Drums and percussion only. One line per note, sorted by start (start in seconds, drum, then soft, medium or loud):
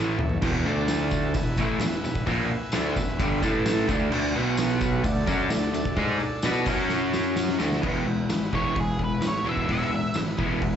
0.19 mid tom medium
0.29 floor tom medium
0.42 kick loud
0.42 crash loud
0.42 tambourine soft
0.88 snare loud
0.88 open hi-hat medium
0.88 tambourine loud
1.11 kick medium
1.11 tambourine medium
1.34 kick loud
1.34 open hi-hat medium
1.34 tambourine medium
1.57 kick medium
1.57 tambourine medium
1.80 snare loud
1.80 open hi-hat medium
1.80 tambourine loud
2.05 tambourine medium
2.15 kick medium
2.26 kick loud
2.26 open hi-hat medium
2.26 tambourine soft
2.72 snare loud
2.72 open hi-hat medium
2.72 tambourine loud
2.96 kick medium
2.96 tambourine medium
3.19 kick loud
3.19 open hi-hat medium
3.19 tambourine medium
3.43 kick medium
3.43 tambourine medium
3.66 snare loud
3.66 open hi-hat medium
3.66 tambourine loud
3.89 kick loud
3.89 tambourine medium
4.12 crash loud
4.12 tambourine soft
4.57 snare loud
4.57 open hi-hat medium
4.57 tambourine loud
4.81 kick medium
4.81 tambourine medium
5.04 kick loud
5.04 open hi-hat medium
5.04 tambourine medium
5.27 kick medium
5.27 tambourine medium
5.50 snare loud
5.50 open hi-hat medium
5.50 tambourine loud
5.74 tambourine medium
5.85 kick medium
5.96 kick loud
5.96 open hi-hat medium
5.96 tambourine soft
6.20 tambourine soft
6.42 snare loud
6.42 open hi-hat medium
6.42 tambourine loud
6.66 kick loud
6.66 tambourine medium
6.66 crash loud
6.90 snare medium
6.90 tambourine medium
7.13 snare medium
7.13 tambourine medium
7.36 snare loud
7.36 tambourine medium
7.48 snare medium
7.60 snare loud
7.60 tambourine medium
7.73 snare medium
7.83 kick loud
7.83 crash loud
8.30 snare loud
8.30 open hi-hat medium
8.30 tambourine medium
8.53 kick medium
8.76 kick loud
8.76 open hi-hat medium
8.99 kick medium
9.22 snare loud
9.22 open hi-hat medium
9.22 tambourine medium
9.57 kick medium
9.69 kick medium
9.69 open hi-hat medium
10.14 snare loud
10.14 open hi-hat medium
10.14 tambourine medium
10.39 kick medium
10.62 kick loud
10.62 open hi-hat medium